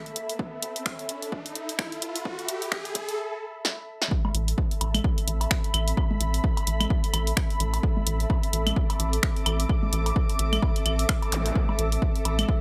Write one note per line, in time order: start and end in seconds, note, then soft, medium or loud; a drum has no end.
0.00 3.18 A4 medium
0.00 3.18 E5 medium
0.00 3.18 B5 medium
0.00 riser medium
0.06 closed hi-hat soft
0.16 0.35 A1 medium
0.16 closed hi-hat medium
0.30 closed hi-hat medium
0.39 kick loud
0.62 0.81 A1 loud
0.62 closed hi-hat medium
0.76 closed hi-hat medium
0.86 finger snap medium
0.86 kick loud
0.99 closed hi-hat soft
1.09 1.28 A1 medium
1.09 closed hi-hat medium
1.22 closed hi-hat medium
1.32 kick loud
1.46 closed hi-hat soft
1.55 1.74 A1 medium
1.55 closed hi-hat medium
1.69 closed hi-hat medium
1.79 finger snap loud
1.79 kick loud
1.92 closed hi-hat soft
2.02 2.21 A1 loud
2.02 closed hi-hat medium
2.16 closed hi-hat medium
2.25 kick loud
2.39 closed hi-hat soft
2.49 2.67 A1 loud
2.49 closed hi-hat medium
2.62 closed hi-hat medium
2.72 finger snap medium
2.72 kick loud
2.85 closed hi-hat soft
2.95 3.14 A1 medium
2.95 kick medium
2.95 closed hi-hat medium
3.09 closed hi-hat medium
3.65 snare loud
4.02 snare medium
4.11 12.61 C4 medium
4.11 12.61 A4 medium
4.11 kick loud
4.25 low conga medium
4.25 high woodblock medium
4.34 4.53 A1 loud
4.34 12.61 E5 medium
4.34 closed hi-hat medium
4.48 closed hi-hat medium
4.58 kick loud
4.71 closed hi-hat soft
4.78 5.00 A1 medium
4.78 8.52 B5 medium
4.78 closed hi-hat loud
4.78 high woodblock medium
4.94 closed hi-hat medium
4.94 low conga loud
4.94 claves medium
5.04 kick loud
5.18 closed hi-hat soft
5.28 5.46 A1 medium
5.28 closed hi-hat medium
5.41 closed hi-hat medium
5.41 high woodblock medium
5.51 finger snap loud
5.51 kick loud
5.64 closed hi-hat soft
5.74 5.93 A1 loud
5.74 closed hi-hat medium
5.74 claves medium
5.88 closed hi-hat medium
5.97 kick loud
5.97 high woodblock medium
6.11 low conga medium
6.21 6.39 A1 loud
6.21 closed hi-hat medium
6.34 closed hi-hat soft
6.44 kick loud
6.57 closed hi-hat soft
6.57 high woodblock medium
6.67 6.86 A1 medium
6.67 closed hi-hat loud
6.80 closed hi-hat soft
6.80 low conga medium
6.80 claves medium
6.90 kick loud
7.04 closed hi-hat soft
7.14 7.32 A1 medium
7.14 closed hi-hat loud
7.14 claves medium
7.14 high woodblock medium
7.27 closed hi-hat medium
7.37 finger snap loud
7.37 kick loud
7.50 closed hi-hat soft
7.60 7.79 A1 medium
7.60 closed hi-hat loud
7.74 closed hi-hat medium
7.74 high woodblock medium
7.83 kick loud
7.97 low conga medium
8.07 8.26 A1 loud
8.07 closed hi-hat loud
8.20 closed hi-hat soft
8.30 kick loud
8.30 high woodblock medium
8.43 closed hi-hat soft
8.50 8.72 A1 medium
8.50 12.24 D6 medium
8.50 closed hi-hat medium
8.67 closed hi-hat soft
8.67 low conga loud
8.67 claves medium
8.76 kick loud
8.90 closed hi-hat soft
8.90 high woodblock medium
9.00 9.19 A1 medium
9.00 closed hi-hat medium
9.13 closed hi-hat medium
9.23 finger snap loud
9.23 kick loud
9.36 closed hi-hat soft
9.46 9.65 A1 loud
9.46 closed hi-hat loud
9.46 claves medium
9.46 high woodblock medium
9.60 closed hi-hat medium
9.69 kick loud
9.83 low conga medium
9.93 10.12 A1 loud
9.93 closed hi-hat loud
10.06 closed hi-hat soft
10.06 high woodblock medium
10.16 kick loud
10.29 closed hi-hat soft
10.39 10.58 A1 medium
10.39 closed hi-hat loud
10.53 closed hi-hat soft
10.53 low conga medium
10.53 claves medium
10.62 kick loud
10.62 high woodblock medium
10.76 closed hi-hat soft
10.86 11.05 A1 medium
10.86 closed hi-hat medium
10.86 claves medium
10.99 closed hi-hat medium
11.09 finger snap loud
11.09 kick loud
11.22 closed hi-hat soft
11.22 high woodblock medium
11.32 11.51 A1 medium
11.32 closed hi-hat medium
11.32 zap medium
11.46 closed hi-hat medium
11.56 kick loud
11.69 low conga medium
11.69 high woodblock medium
11.79 11.98 A1 loud
11.79 closed hi-hat medium
11.92 closed hi-hat medium
12.02 kick loud
12.16 closed hi-hat soft
12.22 12.44 A1 medium
12.22 12.61 B5 medium
12.22 closed hi-hat medium
12.22 high woodblock medium
12.39 closed hi-hat soft
12.39 low conga medium
12.39 claves medium
12.49 kick loud